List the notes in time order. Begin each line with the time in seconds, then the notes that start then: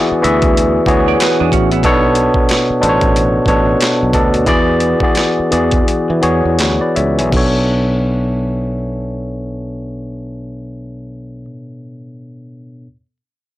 Already playing: E3 B3 F#4 G#4 D5 E5
0.12 muted fretless electric bass stroke
0.22 D2 E3 B3 F#4 G#4 E5, closed hi-hat
0.42 kick, closed hi-hat
0.57 closed hi-hat
0.86 D2 E3 B3 F#4 G#4 C#5, kick, closed hi-hat
1.08 G#4 D5
1.20 F#4 B4, snare, clap, closed hi-hat
1.40 E2 D4 G#4
1.52 A1 C#4 F#4, kick, closed hi-hat
1.71 B3 E4, closed hi-hat
1.83 B1 B2 B3 D4 A4 C#5, kick, closed hi-hat
2.15 closed hi-hat
2.34 kick
2.49 snare, clap, closed hi-hat
2.70 muted fretless electric bass stroke
2.81 A1 B2 B3 D4 A4 C5, closed hi-hat
2.89 C#5
3.01 kick, closed hi-hat
3.16 closed hi-hat
3.46 A1 B2 B3 D4 A4 C#5, kick, closed hi-hat
3.81 snare, clap, closed hi-hat
4.03 B1
4.13 D2 B2 B3 D4 A4 D5, kick, closed hi-hat
4.34 closed hi-hat
4.46 E2 E3 B3 F#4 G#4 D5, kick, closed hi-hat
4.80 closed hi-hat
5.00 E3 B3 F#4 G#4 D5, kick
5.15 snare, clap, closed hi-hat
5.40 muted fretless electric bass stroke
5.51 E2 E3 B3 F#4 G#4 D5, closed hi-hat
5.71 kick, closed hi-hat
5.88 closed hi-hat
6.10 E3
6.21 E2 E3 B3 F#4 G#4 C#5, closed hi-hat
6.45 E2
6.59 D2 G#4 B4, snare, clap, closed hi-hat
6.81 B4 D5
6.96 C#2 C#5 E5, closed hi-hat
7.19 B1 E5 G#5, closed hi-hat
7.30 B1 B2 B3 D4, kick, crash
7.35 A4 C#5